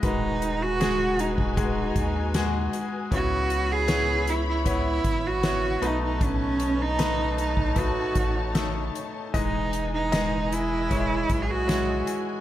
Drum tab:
HH |x-x-x-x-x-x-x-x-|x-x-x-x-x-x-x-x-|x-x-x-x-x-x-x-x-|x-x-x-x-x-x-x-x-|
SD |----o-------o---|----o-------o---|----o-------o---|----o-------o---|
BD |o------oo-o-----|o-------o-o-----|o------oo-o-----|o-------o-o-----|